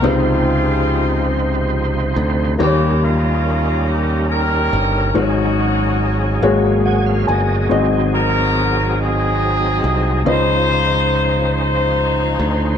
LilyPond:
<<
  \new Staff \with { instrumentName = "Upright piano" } { \time 6/8 \key des \major \tempo 4. = 47 << { r2. | r2. | r2 ges''8 aes''8 | r2. |
r2. | } \\ { <c ees' f' c''>2. | <bes ees' g' c'' des''>2. | <aes ees' ges' c'' des''>4. <bes ges' aes' des''>4. | <c' ges' aes' ees''>2. |
<des' f' c'' ees''>2. | } >> }
  \new Staff \with { instrumentName = "Upright piano" } { \clef bass \time 6/8 \key des \major des4. r4. | ees4. r4. | aes,4. aes4. | aes,4. r4. |
des4. r4. | }
  \new Staff \with { instrumentName = "Horn section" } { \time 6/8 \key des \major << { f'2 r4 | g'8 f'4 g'8 bes'4 | ges'2 r4 | r8 bes'4 aes'4. |
c''4. c''4 r8 | } \\ { <aes c'>2 r4 | <bes des'>8 <bes des'>4. <des' g'>4 | <des' ees'>2 r4 | r8 <ees' ges'>4 <c' ees'>4. |
<ees' f'>4. <ees' f'>4. | } >> }
  \new Staff \with { instrumentName = "Tonewheel organ" } { \time 6/8 \key des \major << { r2. | r2. | r2 aes''16 f''16 ees''8 | r2. |
r2. | } \\ { <f c' ees' c''>2. | <g des' ees' bes'>2. | <ges des' ees' ges' aes'>4. <ges bes c' des' aes'>4. | <ges c' ees' aes'>2. |
<f des' ees' c''>2. | } >> }
  \new Staff \with { instrumentName = "Picked electric bass" } { \clef bass \time 6/8 \key des \major des,2~ des,8 d,8 | ees,2~ ees,8 g,,8 | aes,,4. aes,,4 g,,8 | aes,,2~ aes,,8 c,8 |
des,2~ des,8 d,8 | }
>>